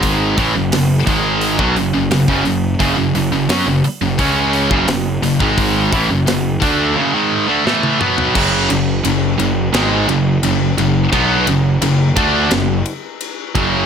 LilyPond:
<<
  \new Staff \with { instrumentName = "Distorted electric guitar" } { \clef bass \time 4/4 \key fis \minor \tempo 4 = 87 <gis, dis gis>8 <a, e>16 <fis, cis>16 <fis, cis>8 <gis, dis gis>8. <b, fis>16 <fis, cis>16 <fis, cis>16 <fis, cis>16 <fis, cis>16 <fis, cis>8 | <fis, cis>16 <fis, cis>16 <fis, cis>16 <fis, cis>16 <fis cis'>16 <fis, cis>16 r16 <fis, cis>16 <cis gis cis'>8. <fis, cis>16 <fis, cis>8 <fis, cis>16 <gis, dis gis>16~ | <gis, dis gis>8 <a, e>16 <fis, cis>16 <fis, cis>8 <d a d'>8 <fis, cis>16 <gis, dis gis>8 <d a>16 <a, e a>8 <b, fis b>8 | <fis, cis fis>8 <fis, cis>8 <fis, cis>8 <fis, cis>8 <gis, dis gis>8 <fis, cis>8 <fis, cis>8 <fis, cis>8 |
<b, fis b>8 <fis, cis>8 <fis, cis>8 <d a d'>8 <fis, cis>8 r4 <fis, cis fis>8 | }
  \new Staff \with { instrumentName = "Distorted electric guitar" } { \clef bass \time 4/4 \key fis \minor <gis, dis gis>8 <a, e>16 <fis, cis>16 <fis, cis>8 <gis, dis gis>8. <b, fis>16 <fis, cis>16 <fis, cis>16 <fis, cis>16 <fis, cis>16 <fis, cis>8 | <fis, cis>16 <fis, cis>16 <fis, cis>16 <fis, cis>16 <fis cis'>16 <fis, cis>16 r16 <fis, cis>16 <cis gis cis'>8. <fis, cis>16 <fis, cis>8 <fis, cis>16 <gis, dis gis>16~ | <gis, dis gis>8 <a, e>16 <fis, cis>16 <fis, cis>8 <d a d'>8 <fis, cis>16 <gis, dis gis>8 <d a>16 <a, e a>8 <b, fis b>8 | <fis, cis fis>8 <fis, cis>8 <fis, cis>8 <fis, cis>8 <gis, dis gis>8 <fis, cis>8 <fis, cis>8 <fis, cis>8 |
<b, fis b>8 <fis, cis>8 <fis, cis>8 <d a d'>8 <fis, cis>8 r4 <fis, cis fis>8 | }
  \new Staff \with { instrumentName = "Picked electric bass" } { \clef bass \time 4/4 \key fis \minor gis,,8 a,,16 fis,,16 fis,,8 gis,,8. b,,16 fis,,16 fis,,16 fis,,16 fis,,16 fis,,8 | fis,,16 fis,,16 fis,,16 fis,,16 fis,16 fis,,16 r16 fis,,16 cis,8. fis,,16 fis,,8 fis,,16 gis,,16~ | gis,,8 a,,16 fis,,16 fis,,8 d,8 r2 | fis,,8 fis,,8 fis,,8 fis,,8 gis,,8 fis,,8 fis,,8 fis,,8 |
b,,8 fis,,8 fis,,8 d,8 fis,,8 r4 fis,,8 | }
  \new DrumStaff \with { instrumentName = "Drums" } \drummode { \time 4/4 <hho bd>8 <hho bd>8 <hho sn>8 <hho bd>8 hho16 bd16 hho8 <hho sn>16 bd16 hho8 | <hho bd>8 hho8 <hho sn>8 hho8 <hho bd>8 hho16 bd16 <hho sn>8 hho16 bd16 | <hho bd>8 <hho bd>8 <hho sn>8 <hho bd>8 r4 sn16 tommh16 toml16 tomfh16 | <cymc bd>8 cymr8 cymr8 cymr8 <cymr sn>8 cymr8 cymr8 cymr8 |
<bd cymr>8 cymr8 cymr8 <bd cymr>8 <cymr sn>8 cymr8 cymr8 <bd cymr>8 | }
>>